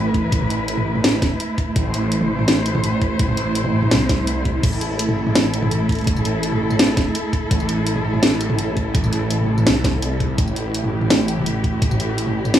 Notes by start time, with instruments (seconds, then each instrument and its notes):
Already playing: detuned saw bass A1, cello section A3 E4 B4
0.14 kick, closed hi-hat
0.23 detuned saw bass A1
0.32 detuned saw bass A1, kick, closed hi-hat
0.42 mid tom
0.50 closed hi-hat
0.68 closed hi-hat
0.77 mid tom
0.95 mid tom
1.04 snare, closed hi-hat
1.22 detuned saw bass E1, kick, snare, closed hi-hat
1.40 closed hi-hat
1.58 kick, closed hi-hat
1.76 detuned saw bass A1, cello section C5, kick, closed hi-hat
1.94 closed hi-hat
2.12 closed hi-hat
2.21 mid tom
2.39 mid tom
2.48 snare, closed hi-hat
2.66 closed hi-hat
2.75 mid tom
2.84 closed hi-hat
3.02 kick, closed hi-hat
3.11 detuned saw bass A1
3.19 detuned saw bass A1, kick, closed hi-hat
3.28 mid tom
3.37 closed hi-hat
3.55 closed hi-hat
3.65 mid tom
3.83 mid tom
3.91 detuned saw bass C2, snare, closed hi-hat
4.09 kick, snare, closed hi-hat
4.27 detuned saw bass C2, closed hi-hat
4.45 kick, closed hi-hat
4.63 detuned saw bass A1, cello section A4, kick, closed hi-hat, crash
4.73 tambourine
4.81 closed hi-hat
4.99 closed hi-hat
5.09 mid tom
5.27 mid tom
5.35 snare, closed hi-hat
5.54 closed hi-hat, tambourine
5.63 mid tom
5.71 closed hi-hat
5.89 kick, closed hi-hat
5.92 closed hi-hat
5.95 detuned saw bass A1, closed hi-hat
5.99 closed hi-hat
6.01 closed hi-hat
6.04 detuned saw bass A1, kick, closed hi-hat
6.07 closed hi-hat
6.16 mid tom, tambourine
6.25 closed hi-hat
6.43 closed hi-hat
6.52 mid tom
6.70 mid tom, tambourine
6.79 snare, closed hi-hat
6.97 detuned saw bass E1, kick, snare, closed hi-hat
7.15 closed hi-hat
7.33 kick, closed hi-hat
7.51 detuned saw bass A1, kick, closed hi-hat
7.60 tambourine
7.69 closed hi-hat
7.87 closed hi-hat
7.96 mid tom
8.14 mid tom
8.23 snare, closed hi-hat
8.41 closed hi-hat, tambourine
8.50 mid tom
8.59 closed hi-hat
8.77 kick, closed hi-hat
8.86 detuned saw bass A1
8.95 detuned saw bass A1, kick, closed hi-hat
9.04 mid tom, tambourine
9.13 closed hi-hat
9.30 closed hi-hat
9.40 mid tom
9.42 mid tom
9.44 mid tom
9.46 mid tom
9.58 mid tom, tambourine
9.66 detuned saw bass C2, snare, closed hi-hat
9.84 kick, snare, closed hi-hat
10.02 detuned saw bass C2, closed hi-hat
10.20 kick, closed hi-hat
10.38 detuned saw bass A1, cello section G4, kick, closed hi-hat
10.48 tambourine
10.56 closed hi-hat
10.74 closed hi-hat
10.84 mid tom
11.01 mid tom
11.10 snare, closed hi-hat
11.28 closed hi-hat, tambourine
11.37 mid tom
11.40 mid tom
11.42 mid tom
11.44 closed hi-hat, mid tom
11.64 kick, closed hi-hat
11.73 detuned saw bass A1
11.82 detuned saw bass A1, kick, closed hi-hat
11.91 mid tom, tambourine
12.00 closed hi-hat
12.18 closed hi-hat
12.27 mid tom
12.45 mid tom, tambourine
12.54 snare, closed hi-hat